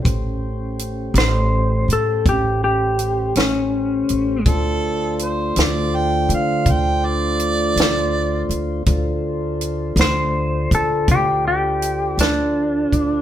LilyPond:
<<
  \new Staff \with { instrumentName = "Harmonica" } { \time 12/8 \key d \minor \tempo 4. = 54 r1. | a'4 c''8 d''8 g''8 f''8 g''8 d''2 r8 | r1. | }
  \new Staff \with { instrumentName = "Electric slide guitar" } { \time 12/8 \key d \minor r4. bis'4 a'8 g'8 g'4 cis'4. | r1. | r4. c''4 a'8 g'8 g'4 d'4. | }
  \new Staff \with { instrumentName = "Tonewheel organ" } { \time 12/8 \key d \minor <a cis' g' bis'>1. | <a d' f' c''>1. | <d' f' a' c''>1. | }
  \new Staff \with { instrumentName = "Upright bass" } { \clef bass \time 12/8 \key d \minor a,,4. a,,4 a,8 a,,4. a,,4 a,,8 | d,4. d,4 d8 d,4. d,4 d,8 | d,4. d,4 d8 d,4. d,4 d,8 | }
  \new DrumStaff \with { instrumentName = "Drums" } \drummode { \time 12/8 <hh bd>4 hh8 <hh sn>4 hh8 <hh bd>4 hh8 <hh sn>4 hh8 | <hh bd>4 hh8 <hh sn>4 hh8 <hh bd>4 hh8 <hh sn>4 hh8 | <hh bd>4 hh8 <hh sn>4 <hh bd>8 <hh bd>4 hh8 <hh sn>4 <hh bd>8 | }
>>